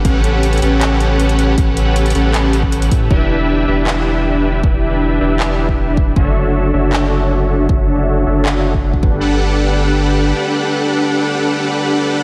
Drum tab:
HH |x---x---x-xxx---x---x---x-x-x---|x---x---x-xxx---x---x---x-x-x---|--------------------------------|--------------------------------|
CP |----------------x---------------|----------------x---------------|----------------x---------------|----------------x---------------|
BD |o-------------------------------|o---------------------o-----o---|o-------------------------------|o---------------------o-----o---|

HH |--------------------------------|--------------------------------|--------------------------------|--------------------------------|
CP |----------------x---------------|----------------x---------------|--------------------------------|--------------------------------|
BD |o-------------------------------|o---------------------o---o-o---|--------------------------------|--------------------------------|